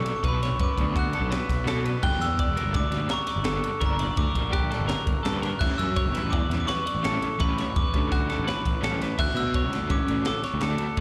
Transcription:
Already playing: overdriven electric guitar B2 F#3 B3 D4, clean electric guitar D3 A4, glockenspiel C#6
0.06 ride
0.16 glockenspiel C#6
0.23 picked electric bass B1, overdriven electric guitar B2 F#3 B3 D4, clean electric guitar B4, kick, ride
0.28 glockenspiel B5
0.43 clean electric guitar C#5, snare, ride
0.59 picked electric bass F#2, clean electric guitar B4, glockenspiel D6, kick, ride
0.78 picked electric bass D2, overdriven electric guitar B2 F#3 B3 D4, kick, ride
0.96 clean electric guitar F#4, glockenspiel F#6, kick, ride
1.13 overdriven electric guitar B2 F#3 B3 D4, clean electric guitar A4, ride
1.20 picked electric bass B1
1.31 clean electric guitar B4, snare, ride
1.49 picked electric bass B1, kick, snare, ride
1.65 overdriven electric guitar B2 F#3 B3 D4, picked electric bass B2, clean electric guitar A4, snare, ride
1.84 clean electric guitar B4, ride
2.03 picked electric bass G1, overdriven electric guitar D3 G3 A#3 D4, clean electric guitar G5, glockenspiel F#6, kick, crash
2.19 picked electric bass E2, glockenspiel E6, ride
2.23 snare
2.39 clean electric guitar D5, kick, ride
2.47 picked electric bass E1
2.56 overdriven electric guitar D3 G3 A#3 D4, clean electric guitar A#4, ride
2.65 picked electric bass G1
2.74 picked electric bass D2, clean electric guitar D5, glockenspiel D6, kick, snare, ride
2.91 picked electric bass D2, overdriven electric guitar D3 G3 A#3 D4, snare, ride
3.09 clean electric guitar A#4, snare, ride
3.13 glockenspiel C#6
3.27 clean electric guitar D5, snare, ride
3.36 picked electric bass G1
3.44 picked electric bass G1, overdriven electric guitar D3 G3 A#3 D4, clean electric guitar A4, snare, ride
3.64 ride
3.80 picked electric bass G1, overdriven electric guitar D3 G3 A#3 D4, clean electric guitar A#4, kick, ride
3.86 glockenspiel A#5
3.99 clean electric guitar D5, ride
4.17 picked electric bass D2, clean electric guitar A#4, glockenspiel D6, kick, ride
4.35 picked electric bass A#1, overdriven electric guitar D3 G3 A#3 D4, kick, ride
4.53 clean electric guitar G4, glockenspiel F#6, kick, snare, ride
4.71 overdriven electric guitar D3 G3 A#3 D4, clean electric guitar A4, snare, ride
4.79 picked electric bass G1
4.88 clean electric guitar A#4, snare, ride
5.07 picked electric bass G1, kick, ride
5.23 picked electric bass G2, overdriven electric guitar D3 G3 A#3 D4, clean electric guitar A4, snare, ride
5.42 clean electric guitar A#4, snare, ride
5.59 picked electric bass A1, overdriven electric guitar E3 G3 C#4 E4, clean electric guitar E5, glockenspiel F#6, kick, crash
5.78 picked electric bass F#2, glockenspiel E6, ride
5.96 clean electric guitar C#5, kick, ride
6.06 picked electric bass G1
6.15 overdriven electric guitar E3 G3 C#4 E4, clean electric guitar B4, snare, ride
6.24 picked electric bass A1
6.31 picked electric bass E2, clean electric guitar D5, glockenspiel D6, kick, ride
6.49 picked electric bass E2, overdriven electric guitar E3 G3 C#4 E4, snare, ride
6.60 glockenspiel D6
6.67 clean electric guitar B4, glockenspiel C#6, snare, ride
6.86 clean electric guitar D5, ride
6.95 picked electric bass A1
7.03 picked electric bass A1, overdriven electric guitar E3 G3 C#4 E4, clean electric guitar A4, snare, ride
7.22 ride
7.39 picked electric bass A1, overdriven electric guitar E3 G3 C#4 E4, clean electric guitar B4, glockenspiel B5, kick, ride
7.58 clean electric guitar C#5, snare, ride
7.76 picked electric bass E2, clean electric guitar B4, glockenspiel D6, kick, ride
7.93 picked electric bass D2, overdriven electric guitar E3 G3 C#4 E4, kick, ride
8.12 clean electric guitar F#4, glockenspiel F#6, kick, snare, ride
8.28 overdriven electric guitar E3 G3 C#4 E4, clean electric guitar A4, snare, ride
8.38 picked electric bass A1
8.47 clean electric guitar B4, snare, ride
8.65 picked electric bass A1, kick, ride
8.82 picked electric bass A1, overdriven electric guitar E3 G3 C#4 E4, clean electric guitar A4, snare, ride
9.01 clean electric guitar B4, snare, ride
9.18 picked electric bass D2, overdriven electric guitar D3 A3 D4 F#4, clean electric guitar E5, glockenspiel F#6, kick, crash
9.35 picked electric bass B2, glockenspiel E6, ride
9.54 clean electric guitar C#5, kick, ride
9.62 picked electric bass C#2
9.71 overdriven electric guitar D3 A3 D4 F#4, clean electric guitar A4, snare, ride
9.81 picked electric bass D2
9.90 picked electric bass A1, clean electric guitar C#4, glockenspiel D6, kick, ride
10.07 picked electric bass A1, overdriven electric guitar D3 A3 D4 F#4, ride
10.25 clean electric guitar A4, glockenspiel D6, snare, ride
10.43 clean electric guitar C#5, snare, ride
10.54 picked electric bass D2
10.61 picked electric bass D2, overdriven electric guitar D3 A3 D4 F#4, clean electric guitar A4, snare, ride
10.78 ride
10.97 ride

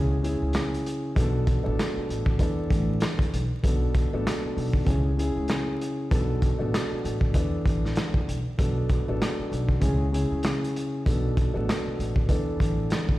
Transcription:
Already playing: upright bass C#2, grand piano C#3 C#4 E4 G#4
0.22 grand piano C#3 C#4 E4 G#4, closed hi-hat
0.42 upright bass C#2
0.53 cross-stick, snare, closed hi-hat
0.74 closed hi-hat
0.86 closed hi-hat
1.15 upright bass B1, grand piano B2 B3 D4 A4, kick, closed hi-hat
1.47 kick, closed hi-hat
1.63 upright bass A1, grand piano B2 B3 D4 A4
1.79 cross-stick, snare, closed hi-hat
1.97 muted upright bass stroke
2.09 upright bass A1, closed hi-hat
2.26 kick
2.39 upright bass E2, grand piano E3 B3 D4 A4, kick, closed hi-hat
2.70 upright bass A1, kick, closed hi-hat
3.00 cross-stick, snare, closed hi-hat
3.19 kick, closed hi-hat
3.33 upright bass B1, closed hi-hat
3.62 upright bass B1, grand piano B2 B3 D4 A4, kick, closed hi-hat
3.94 kick, closed hi-hat
4.12 upright bass A1, grand piano B2 B3 D4 A4
4.27 cross-stick, snare, closed hi-hat
4.44 muted upright bass stroke
4.57 upright bass B1, open hi-hat
4.73 kick
4.85 upright bass C#2, grand piano C#3 C#4 E4 G#4, kick, closed hi-hat
5.17 grand piano C#3 C#4 E4 G#4, closed hi-hat
5.37 upright bass C#2
5.48 cross-stick, snare, closed hi-hat
5.81 closed hi-hat
6.10 upright bass B1, grand piano B2 B3 D4 A4, kick, closed hi-hat
6.42 kick, closed hi-hat
6.58 upright bass A1, grand piano B2 B3 D4 A4
6.74 cross-stick, snare, closed hi-hat
6.92 muted upright bass stroke
7.04 upright bass A1, closed hi-hat
7.21 kick
7.34 upright bass E2, grand piano E3 B3 D4 A4, kick, closed hi-hat
7.66 upright bass A1, kick, closed hi-hat
7.85 snare
7.96 cross-stick, snare, closed hi-hat
8.14 kick
8.28 upright bass B1, closed hi-hat
8.58 upright bass B1, grand piano B2 B3 D4 A4, kick, closed hi-hat
8.89 kick, closed hi-hat
9.07 upright bass A1, grand piano B2 B3 D4 A4
9.22 cross-stick, snare, closed hi-hat
9.39 muted upright bass stroke
9.52 upright bass B1, closed hi-hat
9.69 kick
9.80 upright bass C#2, grand piano C#3 C#4 E4 G#4, kick, closed hi-hat
10.12 grand piano C#3 C#4 E4 G#4, closed hi-hat
10.32 upright bass C#2
10.43 cross-stick, snare, closed hi-hat
10.64 closed hi-hat
10.76 closed hi-hat
11.05 upright bass B1, grand piano B2 B3 D4 A4, kick, closed hi-hat
11.37 kick, closed hi-hat
11.52 upright bass A1, grand piano B2 B3 D4 A4
11.69 cross-stick, snare, closed hi-hat
11.87 muted upright bass stroke
11.99 upright bass A1, closed hi-hat
12.16 kick
12.29 upright bass E2, grand piano E3 B3 D4 A4, kick, closed hi-hat
12.60 upright bass A1, kick, closed hi-hat
12.90 cross-stick, snare, closed hi-hat
13.09 kick

